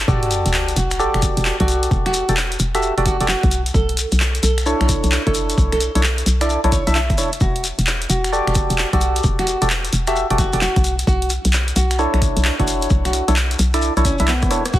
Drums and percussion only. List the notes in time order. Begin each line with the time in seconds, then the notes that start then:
0.00 shekere
0.08 kick, shekere
0.23 closed hi-hat
0.31 open hi-hat, shekere
0.46 closed hi-hat, shekere
0.53 clap, shekere
0.69 closed hi-hat, shekere
0.76 open hi-hat, shekere
0.91 finger snap, closed hi-hat, shekere
1.00 shekere
1.14 finger snap, closed hi-hat
1.22 kick, open hi-hat, shekere
1.37 closed hi-hat, shekere
1.45 clap, shekere
1.60 kick, closed hi-hat
1.68 open hi-hat, shekere
1.83 closed hi-hat, shekere
1.91 kick, shekere
2.06 finger snap, closed hi-hat
2.14 open hi-hat, shekere
2.29 closed hi-hat, shekere
2.37 clap, shekere
2.52 closed hi-hat, shekere
2.59 open hi-hat, shekere
2.75 finger snap, closed hi-hat, shekere
2.82 shekere
2.98 closed hi-hat
3.06 kick, open hi-hat, shekere
3.21 closed hi-hat, shekere
3.28 clap, shekere
3.43 finger snap, kick, closed hi-hat, shekere
3.51 open hi-hat, shekere
3.66 closed hi-hat, shekere
3.74 kick, shekere
3.89 closed hi-hat
3.97 open hi-hat, shekere
4.12 closed hi-hat, shekere
4.20 clap, shekere
4.35 closed hi-hat, shekere
4.43 open hi-hat, shekere
4.58 finger snap, closed hi-hat, shekere
4.66 shekere
4.81 finger snap, closed hi-hat
4.89 kick, open hi-hat, shekere
5.04 closed hi-hat, shekere
5.12 clap, shekere
5.27 kick, closed hi-hat
5.34 open hi-hat, shekere
5.49 closed hi-hat, shekere
5.58 kick, shekere
5.72 finger snap, closed hi-hat
5.80 open hi-hat, shekere
5.95 closed hi-hat, shekere
6.03 clap, shekere
6.18 closed hi-hat, shekere
6.26 open hi-hat, shekere
6.41 finger snap, closed hi-hat, shekere
6.49 shekere
6.64 closed hi-hat
6.72 kick, open hi-hat, shekere
6.87 closed hi-hat, shekere
6.95 clap, shekere
7.10 finger snap, kick, closed hi-hat, shekere
7.18 open hi-hat, shekere
7.33 closed hi-hat, shekere
7.40 kick, shekere
7.56 closed hi-hat
7.64 open hi-hat, shekere
7.79 closed hi-hat, shekere
7.87 clap, shekere
8.02 closed hi-hat, shekere
8.10 open hi-hat, shekere
8.24 finger snap, closed hi-hat, shekere
8.33 shekere
8.47 finger snap, closed hi-hat
8.55 kick, open hi-hat, shekere
8.70 closed hi-hat, shekere
8.78 clap, shekere
8.93 kick, closed hi-hat
9.01 open hi-hat, shekere
9.16 closed hi-hat, shekere
9.23 kick, shekere
9.39 finger snap, closed hi-hat
9.47 open hi-hat, shekere
9.62 closed hi-hat, shekere
9.70 clap, shekere
9.85 closed hi-hat, shekere
9.93 open hi-hat, shekere
10.07 finger snap, closed hi-hat, shekere
10.16 shekere
10.30 closed hi-hat
10.38 kick, open hi-hat, shekere
10.53 closed hi-hat, shekere
10.61 clap, shekere
10.76 finger snap, kick, closed hi-hat, shekere
10.84 open hi-hat, shekere
10.99 closed hi-hat, shekere
11.07 kick, shekere
11.22 closed hi-hat
11.30 open hi-hat, shekere
11.45 closed hi-hat, shekere
11.53 clap, shekere
11.68 closed hi-hat, shekere
11.76 open hi-hat, shekere
11.91 finger snap, closed hi-hat, shekere
11.99 shekere
12.14 finger snap, closed hi-hat
12.22 kick, open hi-hat, shekere
12.37 closed hi-hat, shekere
12.44 clap, shekere
12.60 kick, closed hi-hat
12.68 open hi-hat, shekere
12.82 closed hi-hat, shekere
12.90 kick, shekere
13.05 finger snap, closed hi-hat, shekere
13.13 open hi-hat, shekere
13.28 closed hi-hat, shekere
13.36 clap, shekere
13.51 closed hi-hat, shekere
13.59 open hi-hat, shekere
13.74 finger snap, closed hi-hat, shekere
13.82 shekere
13.97 closed hi-hat, shekere
14.05 kick, open hi-hat, shekere
14.18 closed hi-hat, shekere
14.27 cross-stick, clap, shekere
14.42 kick, cross-stick, closed hi-hat, shekere
14.51 cross-stick, open hi-hat, shekere
14.65 cross-stick, closed hi-hat, shekere
14.73 kick, shekere